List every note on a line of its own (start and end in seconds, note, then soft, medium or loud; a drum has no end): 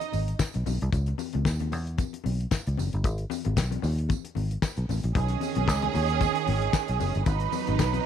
0.00 0.10 D#4 medium
0.00 0.10 D#5 medium
0.00 closed hi-hat soft
0.00 muted conga soft
0.12 0.33 G#1 medium
0.12 open hi-hat medium
0.12 tambourine soft
0.12 high conga medium
0.28 closed hi-hat soft
0.39 kick loud
0.39 snare loud
0.39 tambourine medium
0.39 muted conga soft
0.54 0.64 B1 medium
0.54 closed hi-hat soft
0.54 muted conga soft
0.66 0.77 B1 medium
0.66 open hi-hat medium
0.66 tambourine medium
0.66 high conga medium
0.66 low conga medium
0.81 0.90 C2 loud
0.81 closed hi-hat soft
0.93 1.12 C#2 loud
0.93 kick loud
0.93 closed hi-hat medium
0.93 tambourine soft
0.93 muted conga soft
0.93 low conga medium
1.06 closed hi-hat soft
1.06 muted conga soft
1.18 open hi-hat medium
1.18 tambourine medium
1.18 high conga medium
1.33 1.43 C#2 medium
1.33 closed hi-hat soft
1.33 high conga medium
1.45 1.73 D#2 medium
1.45 kick loud
1.45 snare loud
1.45 tambourine loud
1.59 closed hi-hat soft
1.59 muted conga soft
1.59 high conga medium
1.72 2.03 E2 medium
1.72 open hi-hat medium
1.72 tambourine soft
1.72 low conga medium
1.87 closed hi-hat soft
1.98 kick loud
1.98 closed hi-hat medium
1.98 tambourine soft
1.98 muted conga soft
1.98 high conga medium
2.13 closed hi-hat medium
2.13 muted conga soft
2.24 2.45 B1 medium
2.24 open hi-hat medium
2.24 high conga medium
2.41 closed hi-hat soft
2.51 kick loud
2.51 snare loud
2.51 tambourine medium
2.51 muted conga soft
2.67 2.75 C#2 medium
2.67 closed hi-hat soft
2.77 2.89 F#1 medium
2.77 open hi-hat medium
2.77 tambourine medium
2.77 high conga medium
2.77 low conga medium
2.93 3.05 G1 loud
2.93 closed hi-hat soft
3.04 3.24 G#1 medium
3.04 kick loud
3.04 closed hi-hat medium
3.04 tambourine soft
3.04 low conga medium
3.18 closed hi-hat soft
3.30 open hi-hat medium
3.30 tambourine medium
3.30 high conga medium
3.45 3.54 G#1 medium
3.45 closed hi-hat soft
3.45 high conga medium
3.56 3.77 B1 medium
3.56 kick loud
3.56 snare loud
3.56 tambourine medium
3.56 muted conga soft
3.71 closed hi-hat soft
3.71 muted conga soft
3.71 high conga medium
3.82 4.13 D#2 loud
3.82 open hi-hat medium
3.82 tambourine soft
3.82 low conga medium
3.99 closed hi-hat soft
4.09 kick loud
4.09 closed hi-hat medium
4.09 tambourine medium
4.09 muted conga soft
4.09 high conga medium
4.25 closed hi-hat medium
4.25 muted conga soft
4.35 4.56 G#1 medium
4.35 open hi-hat medium
4.35 high conga medium
4.51 closed hi-hat medium
4.62 kick loud
4.62 snare loud
4.62 tambourine medium
4.62 muted conga soft
4.77 4.86 B1 medium
4.77 closed hi-hat soft
4.77 muted conga soft
4.89 5.00 A1 medium
4.89 open hi-hat medium
4.89 tambourine medium
4.89 high conga medium
4.89 low conga medium
5.03 5.12 A#1 loud
5.03 closed hi-hat soft
5.15 5.35 B1 loud
5.15 7.22 D#3 medium
5.15 7.22 C#4 medium
5.15 7.22 G#4 loud
5.15 kick loud
5.15 closed hi-hat medium
5.15 muted conga soft
5.15 low conga medium
5.28 closed hi-hat soft
5.28 muted conga soft
5.40 open hi-hat medium
5.40 tambourine medium
5.40 high conga medium
5.55 5.68 B1 medium
5.55 closed hi-hat soft
5.55 high conga medium
5.68 5.87 C#2 medium
5.68 kick loud
5.68 snare loud
5.68 tambourine loud
5.82 closed hi-hat soft
5.82 muted conga soft
5.82 high conga medium
5.93 6.25 D#2 medium
5.93 open hi-hat medium
5.93 tambourine soft
5.93 low conga loud
6.09 closed hi-hat soft
6.21 kick loud
6.21 closed hi-hat medium
6.21 tambourine medium
6.21 muted conga soft
6.21 high conga medium
6.35 closed hi-hat medium
6.35 muted conga soft
6.46 6.67 G#1 medium
6.46 open hi-hat medium
6.46 high conga medium
6.62 closed hi-hat medium
6.73 kick loud
6.73 snare loud
6.73 tambourine medium
6.73 muted conga soft
6.88 6.97 B1 medium
6.88 closed hi-hat medium
7.00 7.11 F#1 medium
7.00 open hi-hat medium
7.00 tambourine medium
7.00 high conga medium
7.00 low conga medium
7.15 7.24 G1 medium
7.15 closed hi-hat medium
7.26 7.46 G#1 loud
7.26 8.06 F#3 medium
7.26 8.06 D#4 medium
7.26 8.06 B4 medium
7.26 kick loud
7.26 closed hi-hat medium
7.26 tambourine soft
7.26 muted conga soft
7.26 low conga medium
7.40 closed hi-hat soft
7.40 muted conga soft
7.52 open hi-hat medium
7.52 tambourine medium
7.52 high conga medium
7.67 7.76 G#1 medium
7.67 closed hi-hat soft
7.67 high conga medium
7.79 7.99 B1 loud
7.79 kick loud
7.79 snare loud
7.79 tambourine medium
7.79 muted conga soft
7.93 closed hi-hat medium
7.93 muted conga soft
7.93 high conga medium